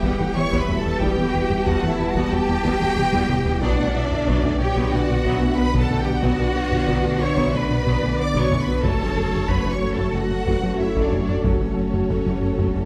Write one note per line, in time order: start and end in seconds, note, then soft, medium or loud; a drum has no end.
0.00 3.63 E1 medium
0.00 0.10 E2 medium
0.00 0.14 E2 medium
0.00 0.13 E3 medium
0.00 3.62 G3 medium
0.00 0.19 G3 medium
0.00 3.45 B3 medium
0.00 3.58 B3 medium
0.00 0.19 B3 medium
0.00 3.62 E4 medium
0.00 0.36 G4 medium
0.00 3.45 G4 medium
0.00 3.58 B4 medium
0.00 0.36 F#5 medium
0.00 0.36 G5 medium
0.00 taiko medium
0.20 0.26 E2 medium
0.20 0.30 E3 medium
0.20 0.27 F#3 medium
0.20 0.27 A3 medium
0.20 0.30 B3 medium
0.36 0.42 E2 medium
0.36 0.46 E3 medium
0.36 0.43 G3 medium
0.36 0.46 B3 medium
0.36 0.43 B3 medium
0.36 0.58 C#5 loud
0.36 1.00 E5 medium
0.36 0.58 C#6 loud
0.52 0.59 E2 medium
0.52 0.63 E2 medium
0.52 0.62 E3 medium
0.52 0.68 G3 medium
0.52 0.68 B3 medium
0.52 taiko medium
0.58 0.80 B4 medium
0.58 0.80 B5 medium
0.68 0.75 E2 medium
0.68 0.79 E2 medium
0.68 0.75 F#3 medium
0.68 0.78 G3 medium
0.68 0.75 A3 medium
0.68 taiko low-mid medium
0.80 1.01 A4 medium
0.80 1.02 A5 medium
0.84 0.92 E2 medium
0.84 0.95 E2 medium
0.84 0.94 G3 medium
0.84 0.92 G3 medium
0.84 0.92 B3 medium
1.00 1.11 E2 medium
1.00 1.08 E2 medium
1.00 1.10 E3 medium
1.00 1.17 G3 medium
1.00 1.17 B3 medium
1.00 1.67 G4 loud
1.00 1.66 G5 medium
1.00 1.65 G5 medium
1.00 taiko medium
1.16 1.24 E2 medium
1.16 1.27 E3 medium
1.16 1.25 F#3 medium
1.16 1.25 A3 medium
1.16 1.27 B3 medium
1.33 1.44 E2 medium
1.33 1.41 E2 medium
1.33 1.43 G3 medium
1.33 1.41 G3 medium
1.33 1.41 B3 medium
1.50 1.60 E2 medium
1.50 1.57 E2 medium
1.50 1.57 E3 medium
1.50 1.60 G3 medium
1.50 1.57 G3 medium
1.50 taiko low-mid soft
1.65 1.73 E2 medium
1.65 1.76 E2 loud
1.65 1.76 E3 medium
1.65 1.82 G3 medium
1.65 1.82 B3 medium
1.65 1.89 F#4 loud
1.65 1.88 F#5 medium
1.65 2.97 A5 medium
1.65 taiko medium
1.82 1.90 E2 medium
1.82 1.93 E3 medium
1.82 1.90 F#3 medium
1.82 1.89 A3 medium
1.82 1.93 B3 medium
1.82 taiko low-mid soft
1.89 2.10 E4 medium
1.89 2.10 E5 medium
1.99 2.06 E2 medium
1.99 2.09 E2 medium
1.99 2.09 G3 medium
1.99 2.06 G3 medium
1.99 2.06 B3 medium
2.10 2.32 F#4 loud
2.10 2.31 F#5 medium
2.15 2.22 E2 medium
2.15 2.25 E2 medium
2.15 2.26 E3 medium
2.15 2.31 G3 medium
2.15 2.31 B3 loud
2.15 taiko medium
2.32 2.38 E2 medium
2.32 2.42 E2 medium
2.32 2.39 F#3 medium
2.32 2.42 G3 medium
2.32 2.38 A3 medium
2.32 3.63 G4 loud
2.32 3.62 G5 loud
2.48 2.55 E2 medium
2.48 2.59 E2 medium
2.48 2.55 G3 medium
2.48 2.58 G3 medium
2.48 2.55 B3 medium
2.64 2.74 E2 medium
2.64 2.71 E2 medium
2.64 2.75 E3 loud
2.64 2.79 G3 medium
2.64 2.80 B3 medium
2.64 taiko medium
2.81 2.87 E2 medium
2.81 2.91 E3 medium
2.81 2.87 F#3 medium
2.81 2.87 A3 medium
2.81 2.91 B3 medium
2.96 3.04 E2 medium
2.96 3.07 E3 medium
2.96 3.03 G3 medium
2.96 3.03 B3 medium
2.96 3.07 B3 medium
2.96 3.62 G5 medium
2.96 taiko mid medium
3.12 3.20 E2 loud
3.12 3.24 E2 medium
3.12 3.23 E3 medium
3.12 3.28 G3 medium
3.12 3.28 B3 medium
3.12 taiko high medium
3.29 3.36 E2 medium
3.29 3.40 E2 medium
3.29 3.36 F#3 medium
3.29 3.39 G3 medium
3.29 3.36 A3 medium
3.29 taiko mid loud
3.45 3.53 E2 medium
3.45 3.57 E2 medium
3.45 3.55 G3 medium
3.45 3.52 G3 medium
3.45 3.52 B3 medium
3.45 taiko low medium
3.61 8.85 B1 medium
3.61 3.69 B1 medium
3.61 3.73 B2 medium
3.61 8.84 D3 medium
3.61 3.77 F#3 medium
3.61 3.71 B3 medium
3.61 3.77 B3 loud
3.61 8.80 B3 medium
3.61 8.84 D4 medium
3.61 4.59 D4 loud
3.61 8.80 B4 medium
3.61 4.60 D5 medium
3.61 3.95 F#5 medium
3.61 taiko medium
3.78 3.85 B1 medium
3.78 3.85 E3 medium
3.78 3.84 A3 medium
3.78 3.89 B3 medium
3.78 3.88 F#4 medium
3.93 4.01 B1 medium
3.93 4.05 B2 medium
3.93 4.01 F#3 medium
3.93 4.00 B3 medium
3.93 4.04 D4 medium
3.93 4.28 E5 medium
4.11 4.18 B1 medium
4.11 4.22 B2 medium
4.11 4.18 D3 medium
4.11 4.18 F#3 medium
4.11 4.21 D4 medium
4.11 taiko low-mid medium
4.27 4.34 B1 medium
4.27 4.37 B2 loud
4.27 4.43 F#3 medium
4.27 4.37 B3 medium
4.27 4.43 B3 medium
4.27 4.61 D5 medium
4.27 taiko medium
4.43 4.51 B1 medium
4.43 4.50 E3 medium
4.43 4.50 A3 medium
4.43 4.54 B3 medium
4.43 4.53 F#4 medium
4.43 taiko low-mid medium
4.60 4.67 B1 medium
4.60 4.71 B2 medium
4.60 4.67 F#3 medium
4.60 4.67 B3 medium
4.60 4.70 D4 medium
4.60 4.92 G4 loud
4.60 4.94 C#5 medium
4.60 4.92 G5 medium
4.76 4.83 B1 medium
4.76 4.87 B2 medium
4.76 4.92 F#3 medium
4.76 4.86 B3 loud
4.76 4.92 B3 medium
4.76 taiko medium
4.92 5.00 B1 medium
4.92 5.03 B2 medium
4.92 4.99 E3 medium
4.92 4.99 A3 medium
4.92 5.02 D4 medium
4.92 5.58 F#4 loud
4.92 5.26 D5 medium
4.92 5.58 F#5 medium
5.09 5.16 B1 medium
5.09 5.20 B2 medium
5.09 5.16 F#3 medium
5.09 5.15 B3 medium
5.24 5.32 B1 medium
5.24 5.36 B2 medium
5.24 5.41 F#3 medium
5.24 5.35 B3 loud
5.24 5.41 B3 medium
5.24 5.58 E5 medium
5.24 taiko medium
5.41 5.48 B1 medium
5.41 5.48 E3 medium
5.41 5.48 A3 medium
5.41 5.53 B3 medium
5.41 5.51 F#4 medium
5.57 5.65 B1 medium
5.57 5.64 F#3 medium
5.57 5.64 B3 medium
5.57 5.68 B3 medium
5.57 5.67 F#4 medium
5.57 5.80 B4 loud
5.57 6.24 F#5 medium
5.57 5.79 B5 loud
5.74 5.81 B1 medium
5.74 5.84 B2 loud
5.74 5.89 F#3 medium
5.74 5.84 B3 loud
5.74 5.90 B3 medium
5.74 taiko medium
5.79 6.02 A4 loud
5.79 6.01 A5 medium
5.90 5.97 B1 medium
5.90 6.01 B2 medium
5.90 5.97 E3 medium
5.90 5.97 A3 medium
5.90 6.00 D4 medium
5.90 taiko low-mid medium
6.01 6.23 G4 medium
6.01 6.23 G5 medium
6.06 6.14 B1 medium
6.06 6.17 B2 medium
6.06 6.13 F#3 medium
6.06 6.13 B3 medium
6.06 6.16 D4 medium
6.23 6.30 B1 medium
6.23 6.33 B2 medium
6.23 6.39 F#3 medium
6.23 6.33 B3 medium
6.23 6.38 B3 medium
6.23 7.19 F#4 loud
6.23 6.56 D5 medium
6.23 7.21 F#5 medium
6.23 taiko medium
6.39 6.47 B1 medium
6.39 6.46 E3 medium
6.39 6.46 A3 medium
6.39 6.49 B3 medium
6.39 6.49 F#4 medium
6.55 6.63 B1 medium
6.55 6.66 B2 medium
6.55 6.62 F#3 medium
6.55 6.62 B3 medium
6.55 6.65 D4 medium
6.55 6.89 C#5 medium
6.71 6.79 B1 medium
6.71 6.82 B2 medium
6.71 6.78 D3 medium
6.71 6.78 F#3 medium
6.71 taiko low-mid medium
6.88 6.95 B1 medium
6.88 6.98 B2 loud
6.88 7.03 F#3 medium
6.88 7.03 B3 medium
6.88 6.98 B3 loud
6.88 7.21 D5 medium
6.88 taiko medium
7.03 7.12 B1 medium
7.03 7.10 E3 medium
7.03 7.10 A3 medium
7.03 7.14 B3 medium
7.03 7.14 F#4 medium
7.03 taiko low-mid medium
7.19 7.28 B1 medium
7.19 7.31 B2 medium
7.19 7.26 F#3 medium
7.19 7.26 B3 medium
7.19 7.31 D4 medium
7.19 7.54 C#5 loud
7.19 7.54 E5 medium
7.19 7.54 C#6 medium
7.36 7.44 B1 medium
7.36 7.47 B2 loud
7.36 7.52 F#3 medium
7.36 7.52 B3 medium
7.36 7.47 B3 loud
7.36 taiko medium
7.53 7.61 B1 medium
7.53 7.64 B2 medium
7.53 7.60 E3 medium
7.53 7.60 A3 medium
7.53 7.63 D4 medium
7.53 8.19 B4 loud
7.53 8.85 D5 medium
7.53 8.19 B5 medium
7.69 7.77 B1 medium
7.69 7.80 B2 medium
7.69 7.76 F#3 medium
7.69 7.76 B3 medium
7.69 7.79 D4 medium
7.86 7.93 B1 medium
7.86 7.97 B2 medium
7.86 8.02 F#3 medium
7.86 7.96 B3 loud
7.86 8.01 B3 medium
7.86 taiko medium
8.02 8.09 B1 medium
8.02 8.09 E3 medium
8.02 8.09 A3 medium
8.02 8.13 B3 medium
8.02 8.12 F#4 medium
8.18 8.25 B1 medium
8.18 8.26 F#3 medium
8.18 8.29 B3 medium
8.18 8.26 B3 medium
8.18 8.28 F#4 medium
8.18 8.40 D5 loud
8.18 8.40 D6 medium
8.34 8.41 B1 medium
8.34 8.45 B2 medium
8.34 8.50 F#3 medium
8.34 8.44 B3 loud
8.34 8.50 B3 medium
8.34 taiko medium
8.41 8.62 C#5 medium
8.41 8.62 C#6 medium
8.51 8.58 B1 medium
8.51 8.62 B2 medium
8.51 8.58 E3 medium
8.51 8.58 A3 medium
8.51 8.61 D4 medium
8.51 taiko low-mid medium
8.62 8.84 B4 medium
8.62 8.84 B5 medium
8.67 8.74 B1 medium
8.67 8.78 B2 medium
8.67 8.75 F#3 medium
8.67 8.75 B3 medium
8.67 8.77 D4 medium
8.83 12.85 F#1 medium
8.83 8.90 F#1 medium
8.83 8.94 F#2 loud
8.83 8.93 F#3 medium
8.83 8.99 F#3 medium
8.83 12.85 F#3 medium
8.83 12.85 A3 medium
8.83 8.99 A3 medium
8.83 12.85 C#4 medium
8.83 12.85 F#4 medium
8.83 12.85 A4 medium
8.83 9.49 A4 loud
8.83 10.12 C#5 medium
8.83 9.48 A5 medium
8.83 taiko medium
9.00 9.07 F#1 medium
9.00 9.07 E3 medium
9.00 9.11 F#3 medium
9.00 9.07 G3 medium
9.00 9.10 C#4 medium
9.17 9.23 F#1 medium
9.17 9.27 F#2 medium
9.17 9.24 F#3 medium
9.17 9.27 A3 medium
9.17 9.24 A3 medium
9.32 9.39 F#1 medium
9.32 9.43 F#2 medium
9.32 9.40 C#3 soft
9.32 9.39 F#3 soft
9.32 9.43 A3 medium
9.32 taiko low-mid soft
9.49 9.56 F#1 medium
9.49 9.59 F#2 loud
9.49 9.65 F#3 medium
9.49 9.59 F#3 medium
9.49 9.65 A3 medium
9.49 9.71 B4 medium
9.49 9.71 B5 medium
9.49 taiko medium
9.65 9.72 F#1 soft
9.65 9.72 E3 medium
9.65 9.76 F#3 medium
9.65 9.72 G3 medium
9.65 9.76 C#4 medium
9.65 taiko low-mid soft
9.71 9.93 C#5 medium
9.71 9.93 C#6 medium
9.82 9.89 F#1 medium
9.82 9.92 F#2 medium
9.82 9.88 F#3 soft
9.82 9.92 A3 medium
9.82 9.89 A3 medium
9.93 10.15 A4 medium
9.93 10.15 A5 medium
9.98 10.04 F#1 medium
9.98 10.08 F#2 medium
9.98 10.13 F#3 medium
9.98 10.08 F#3 medium
9.98 10.13 A3 medium
9.98 taiko medium
10.14 10.21 F#1 medium
10.14 10.25 F#2 medium
10.14 10.21 E3 medium
10.14 10.21 G3 medium
10.14 10.25 A3 medium
10.14 10.80 F#4 medium
10.14 10.46 A4 medium
10.14 10.80 F#5 medium
10.30 10.37 F#1 soft
10.30 10.41 F#2 medium
10.30 10.37 F#3 medium
10.30 10.37 A3 soft
10.30 10.41 A3 medium
10.46 10.53 F#1 medium
10.46 10.57 F#2 medium
10.46 10.62 F#3 medium
10.46 10.57 F#3 medium
10.46 10.62 A3 medium
10.46 10.80 B4 medium
10.46 taiko medium
10.63 10.69 F#1 soft
10.63 10.70 E3 soft
10.63 10.73 F#3 medium
10.63 10.70 G3 soft
10.63 10.73 C#4 medium
10.78 10.85 F#1 soft
10.78 10.90 F#3 medium
10.78 10.87 F#3 soft
10.78 10.86 A3 soft
10.78 10.90 C#4 medium
10.78 11.01 E4 medium
10.78 11.45 C#5 medium
10.78 11.01 E5 medium
10.95 11.02 F#1 medium
10.95 11.06 F#2 loud
10.95 11.06 F#3 medium
10.95 11.12 F#3 medium
10.95 11.11 A3 medium
10.95 taiko medium
11.02 11.22 D4 medium
11.02 11.22 D5 medium
11.11 11.18 F#1 soft
11.11 11.22 F#2 medium
11.11 11.20 E3 medium
11.11 11.20 G3 soft
11.11 11.22 A3 medium
11.11 taiko low-mid medium
11.23 11.44 D4 medium
11.23 11.45 D5 medium
11.28 11.34 F#1 soft
11.28 11.38 F#2 medium
11.28 11.36 F#3 soft
11.28 11.39 A3 medium
11.28 11.36 A3 soft
11.44 11.51 F#1 medium
11.44 11.55 F#2 medium
11.44 11.55 F#3 medium
11.44 11.60 F#3 medium
11.44 11.60 A3 medium
11.44 12.85 C#4 medium
11.44 12.85 A4 medium
11.44 12.85 C#5 soft
11.44 taiko medium
11.61 11.67 F#1 soft
11.61 11.69 E3 soft
11.61 11.71 F#3 medium
11.61 11.69 G3 soft
11.61 11.71 C#4 medium
11.77 11.84 F#1 soft
11.77 11.87 F#2 medium
11.77 11.85 F#3 soft
11.77 11.84 A3 soft
11.77 11.88 A3 medium
11.93 12.00 F#1 soft
11.93 12.04 F#2 medium
11.93 12.00 C#3 soft
11.93 12.00 F#3 soft
11.93 12.04 A3 medium
11.93 taiko low-mid soft
12.09 12.16 F#1 medium
12.09 12.20 F#2 medium
12.09 12.25 F#3 medium
12.09 12.20 F#3 medium
12.09 12.25 A3 medium
12.09 taiko medium
12.26 12.33 F#1 soft
12.26 12.33 E3 soft
12.26 12.36 F#3 medium
12.26 12.33 G3 soft
12.26 12.36 C#4 medium
12.26 taiko low-mid soft
12.42 12.49 F#1 soft
12.42 12.52 F#2 medium
12.42 12.50 F#3 soft
12.42 12.52 A3 medium
12.42 12.50 A3 soft
12.58 12.65 F#1 medium
12.58 12.69 F#2 medium
12.58 12.69 F#3 medium
12.58 12.74 F#3 medium
12.58 12.74 A3 medium
12.58 taiko medium
12.75 12.81 F#1 soft
12.75 12.85 F#2 medium
12.75 12.82 E3 soft
12.75 12.82 G3 soft
12.75 12.85 A3 medium